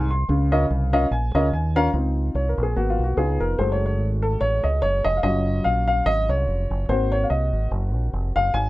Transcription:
0.00 0.23 C2 medium
0.11 0.50 C6 medium
0.29 0.64 C#2 loud
0.29 0.89 C#3 medium
0.52 0.64 C#4 medium
0.52 0.64 F4 medium
0.52 0.64 A#4 medium
0.52 0.64 D#5 medium
0.70 1.05 C2 medium
0.93 1.05 C#4 medium
0.93 1.05 F4 medium
0.93 1.05 A#4 medium
0.93 1.05 D#5 loud
0.93 1.10 F5 medium
1.11 1.31 A#1 medium
1.11 1.50 G#5 medium
1.35 1.50 C#2 medium
1.35 1.46 C#4 medium
1.35 1.46 F4 medium
1.35 1.46 A#4 medium
1.35 1.46 D#5 medium
1.53 1.88 D#2 medium
1.53 1.74 G#5 medium
1.76 1.87 C#4 medium
1.76 1.87 F4 medium
1.76 1.87 A#4 medium
1.76 1.87 F5 loud
1.76 1.93 A#5 medium
1.93 2.29 C#2 medium
1.93 2.55 C4 medium
1.93 2.55 D#4 medium
1.93 2.55 F4 medium
2.35 2.54 C2 medium
2.35 2.49 C#5 medium
2.49 2.63 A#4 medium
2.58 2.73 A#1 medium
2.63 2.77 G#4 medium
2.76 2.96 G#1 medium
2.76 3.15 A#3 medium
2.76 3.16 B3 soft
2.76 3.02 F#4 medium
2.90 3.04 F4 medium
2.99 3.15 B1 medium
3.04 3.17 F#4 medium
3.17 3.37 C#2 medium
3.17 3.57 B3 medium
3.17 3.57 D#4 medium
3.17 3.57 F4 medium
3.17 3.41 G#4 medium
3.40 3.56 F1 medium
3.40 3.59 A#4 medium
3.58 4.00 F#1 loud
3.58 5.20 G#3 medium
3.58 5.20 A3 soft
3.58 5.20 F#4 medium
3.58 3.73 C5 medium
3.72 3.84 C#5 medium
3.86 4.06 C#5 medium
4.00 4.35 G#1 medium
4.22 4.40 A4 medium
4.41 4.61 A1 medium
4.41 4.65 C#5 loud
4.64 4.80 C#2 medium
4.64 4.83 D#5 medium
4.82 5.02 F#1 medium
4.82 5.04 C#5 loud
5.04 5.21 F1 medium
5.04 5.18 D#5 loud
5.17 5.24 F5 medium
5.23 5.59 F#1 loud
5.23 6.85 F#3 medium
5.23 6.85 C#4 soft
5.23 6.85 F4 medium
5.23 5.66 D#5 loud
5.64 6.01 A#1 medium
5.64 5.86 F5 medium
5.88 6.07 F5 loud
6.06 6.26 G#1 medium
6.06 6.28 D#5 loud
6.29 6.45 C2 medium
6.29 6.91 C#5 medium
6.47 6.67 F1 medium
6.70 6.86 F#1 medium
6.89 7.24 G#1 loud
6.89 8.50 A#3 medium
6.89 8.50 C4 soft
6.89 8.51 F#4 medium
6.89 7.13 C5 medium
7.12 7.24 C#5 medium
7.24 7.30 F5 medium
7.30 7.50 C2 medium
7.30 7.69 D#5 medium
7.53 7.69 G#1 medium
7.71 7.94 F#1 medium
7.94 8.10 A#1 medium
8.13 8.33 F1 medium
8.36 8.52 F#1 medium
8.36 8.53 F5 loud
8.54 8.70 G#1 loud
8.54 8.70 G#5 loud

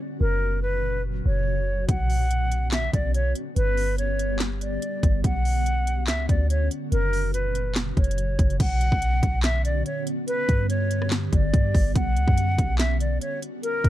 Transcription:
0.00 0.17 D3 medium
0.00 0.17 B3 medium
0.00 0.19 C#4 medium
0.00 3.52 F#4 medium
0.20 1.22 F#1 loud
0.20 1.87 A#2 medium
0.20 1.87 C#3 medium
0.20 1.87 F#3 medium
0.20 0.60 A#4 loud
0.62 1.02 B4 medium
1.26 1.86 F#1 loud
1.26 1.85 C#5 medium
1.89 2.89 B1 loud
1.89 5.21 D3 medium
1.89 6.88 B3 medium
1.89 3.55 C#4 medium
1.89 2.69 F#5 loud
1.89 kick loud
1.89 closed hi-hat medium
2.10 open hi-hat medium
2.31 closed hi-hat medium
2.52 closed hi-hat medium
2.72 2.91 E5 medium
2.72 snare loud
2.72 clap medium
2.72 closed hi-hat medium
2.93 3.34 B1 loud
2.93 3.12 D5 medium
2.93 kick medium
2.93 closed hi-hat medium
3.14 3.33 C#5 medium
3.14 closed hi-hat medium
3.35 closed hi-hat medium
3.56 4.78 G1 loud
3.56 5.23 G3 medium
3.56 5.23 G4 medium
3.56 3.96 B4 loud
3.56 closed hi-hat medium
3.77 open hi-hat medium
3.98 4.38 C#5 medium
3.98 closed hi-hat medium
4.19 closed hi-hat medium
4.40 snare loud
4.40 clap medium
4.40 closed hi-hat medium
4.61 5.21 D5 medium
4.61 closed hi-hat medium
4.82 closed hi-hat medium
5.03 5.23 G1 loud
5.03 kick loud
5.03 closed hi-hat medium
5.24 6.10 B1 loud
5.24 6.90 D3 medium
5.24 6.90 C#4 medium
5.24 8.57 F#4 medium
5.24 6.04 F#5 loud
5.24 kick loud
5.24 closed hi-hat medium
5.45 open hi-hat medium
5.66 closed hi-hat medium
5.87 closed hi-hat medium
6.07 6.28 C#2 loud
6.07 6.26 E5 medium
6.07 snare loud
6.07 clap medium
6.07 closed hi-hat medium
6.29 6.69 D2 loud
6.29 6.47 D5 medium
6.29 kick medium
6.29 closed hi-hat medium
6.50 6.68 C#5 medium
6.50 closed hi-hat medium
6.71 closed hi-hat medium
6.92 7.93 F#1 loud
6.92 8.58 A#2 medium
6.92 8.58 C#3 medium
6.92 8.58 F#3 medium
6.92 7.31 A#4 loud
6.92 closed hi-hat medium
7.13 open hi-hat medium
7.34 7.73 B4 medium
7.34 closed hi-hat medium
7.55 closed hi-hat medium
7.75 snare loud
7.75 clap medium
7.75 closed hi-hat medium
7.97 8.37 F#1 loud
7.97 8.56 C#5 medium
7.97 kick medium
7.97 closed hi-hat soft
8.04 closed hi-hat medium
8.11 closed hi-hat medium
8.18 closed hi-hat medium
8.39 8.59 F#1 loud
8.39 kick loud
8.39 closed hi-hat medium
8.50 closed hi-hat soft
8.60 8.91 B1 loud
8.60 13.59 D3 medium
8.60 13.59 B3 medium
8.60 10.26 C#4 medium
8.60 10.26 F#4 medium
8.60 9.40 F#5 loud
8.60 kick loud
8.60 closed hi-hat medium
8.60 crash loud
8.81 closed hi-hat medium
8.92 9.22 B1 loud
8.92 kick loud
9.02 closed hi-hat medium
9.23 9.83 B1 loud
9.23 kick loud
9.23 closed hi-hat medium
9.43 9.62 E5 medium
9.43 snare loud
9.43 clap medium
9.43 closed hi-hat medium
9.65 9.83 D5 medium
9.65 closed hi-hat medium
9.86 10.04 C#5 medium
9.86 closed hi-hat medium
10.07 closed hi-hat medium
10.27 11.94 G3 medium
10.27 11.94 G4 medium
10.27 10.67 B4 loud
10.27 closed hi-hat medium
10.49 11.29 G2 loud
10.49 kick medium
10.49 closed hi-hat medium
10.69 11.09 C#5 medium
10.69 closed hi-hat medium
10.91 closed hi-hat medium
11.02 cross-stick medium
11.11 snare loud
11.11 clap medium
11.11 closed hi-hat medium
11.33 11.53 G1 loud
11.33 11.92 D5 medium
11.33 kick loud
11.33 closed hi-hat medium
11.54 11.74 G2 loud
11.54 kick loud
11.54 closed hi-hat medium
11.75 11.95 G1 loud
11.75 kick loud
11.75 open hi-hat medium
11.95 12.18 B1 loud
11.95 13.62 C#4 medium
11.95 13.89 F#4 medium
11.95 12.75 F#5 loud
11.95 kick loud
11.95 closed hi-hat medium
12.17 12.27 C#2 loud
12.17 closed hi-hat medium
12.28 12.57 F#2 loud
12.28 kick loud
12.38 closed hi-hat medium
12.58 13.19 B1 loud
12.58 kick loud
12.58 closed hi-hat medium
12.79 12.97 E5 medium
12.79 snare loud
12.79 clap medium
12.79 closed hi-hat medium
13.00 13.19 D5 medium
13.00 closed hi-hat medium
13.21 13.39 C#5 medium
13.21 closed hi-hat medium
13.42 closed hi-hat medium
13.63 13.89 A#4 loud
13.63 closed hi-hat medium
13.84 13.89 C#2 loud
13.84 kick medium
13.84 closed hi-hat soft

